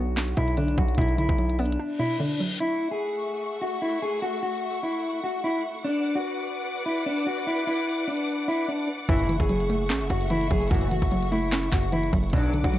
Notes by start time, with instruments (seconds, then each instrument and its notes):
Already playing: 808-style bass B1, synth pluck B2 D3 F#3 B3, clean electric guitar F#4
0.17 synth pluck D4, snare, clap, closed hi-hat
0.28 closed hi-hat
0.37 808-style bass B1, synth pluck B2, clean electric guitar E4, closed hi-hat
0.48 closed hi-hat
0.57 synth pluck D3, clean electric guitar D4, closed hi-hat
0.68 closed hi-hat
0.78 808-style bass B1, synth pluck F#3, clean electric guitar F#4, kick
0.88 closed hi-hat
0.95 808-style bass B1, synth pluck B2, clean electric guitar E4, kick, closed hi-hat
1.02 closed hi-hat
1.08 closed hi-hat
1.18 synth pluck D3, clean electric guitar E4, closed hi-hat
1.29 808-style bass B1, kick, closed hi-hat
1.38 synth pluck F#3, closed hi-hat
1.49 closed hi-hat
1.59 synth pluck B3, clean electric guitar D4, closed hi-hat, open hi-hat
1.66 closed hi-hat
1.72 closed hi-hat
1.79 synth pluck D4, reverse cymbal
1.99 synth pluck B2, clean electric guitar E4
2.20 synth pluck D3, clean electric guitar D4
2.40 synth pluck F#3
2.60 string section A3 E5 F#5 C#6, clean electric guitar E4, closed hi-hat
2.91 clean electric guitar G#4
3.61 clean electric guitar F#4
3.82 clean electric guitar E4
4.02 clean electric guitar G#4
4.22 clean electric guitar F#4
4.43 clean electric guitar F#4
4.83 clean electric guitar E4
5.24 clean electric guitar F#4
5.44 clean electric guitar E4
5.84 clean electric guitar D4, string section B4 D5 D6
6.15 clean electric guitar F#4
6.86 clean electric guitar E4
7.06 clean electric guitar D4
7.27 clean electric guitar F#4
7.47 clean electric guitar E4
7.67 clean electric guitar E4
8.08 clean electric guitar D4
8.48 clean electric guitar E4
8.68 clean electric guitar D4
9.09 808-style bass F#1, analog polysynth C#2 A2 E3, synth pluck F#2, string section A3 E5 C#6, clean electric guitar E4, kick, closed hi-hat
9.19 closed hi-hat
9.29 synth pluck E3, closed hi-hat
9.40 808-style bass F#1, clean electric guitar G#4, kick, closed hi-hat
9.49 synth pluck F#3, closed hi-hat
9.60 closed hi-hat
9.70 synth pluck A3, closed hi-hat
9.90 808-style bass A1, synth pluck C#4, snare, clap, closed hi-hat
10.01 808-style bass F#1, closed hi-hat
10.10 808-style bass F#1, synth pluck F#2, clean electric guitar F#4, closed hi-hat
10.21 closed hi-hat
10.30 synth pluck E3, clean electric guitar E4, closed hi-hat
10.41 closed hi-hat
10.51 808-style bass F#1, synth pluck F#3, clean electric guitar G#4, kick
10.61 closed hi-hat
10.68 808-style bass F#1, analog polysynth C#2 A2 E3, synth pluck F#2, clean electric guitar F#4, kick, closed hi-hat
10.75 closed hi-hat
10.81 closed hi-hat
10.91 synth pluck E3, clean electric guitar F#4, closed hi-hat
11.02 808-style bass F#1, kick, closed hi-hat
11.11 synth pluck F#3, closed hi-hat
11.23 closed hi-hat
11.32 synth pluck A3, clean electric guitar E4, closed hi-hat
11.52 synth pluck C#4, snare, clap, closed hi-hat
11.63 closed hi-hat
11.72 808-style bass F#1, synth pluck F#2, clean electric guitar F#4, kick, snare, clap, closed hi-hat
11.83 closed hi-hat
11.92 synth pluck E3, clean electric guitar E4, closed hi-hat
12.03 closed hi-hat
12.13 808-style bass F#1, synth pluck F#3, kick
12.24 closed hi-hat
12.30 808-style bass B1, analog polysynth D2 B2 F#3, synth pluck B2, clean electric guitar D4, string section B4 D5 F#5 D6, kick, closed hi-hat
12.37 closed hi-hat
12.44 closed hi-hat
12.54 synth pluck D3, closed hi-hat
12.64 808-style bass B1, clean electric guitar F#4, kick, closed hi-hat
12.74 synth pluck F#3, closed hi-hat